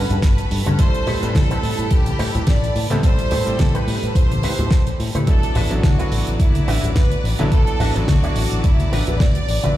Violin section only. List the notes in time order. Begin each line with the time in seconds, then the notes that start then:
Already playing: B4
0.23 B4
0.79 C5
1.35 A4
1.91 G4
2.47 D5
3.03 C5
3.59 A4
3.75 B4
4.15 C5
5.28 A4
5.84 F#4
6.40 E4
6.96 B4
7.52 A4
8.08 F#4
8.64 E4
8.93 B4
9.21 D5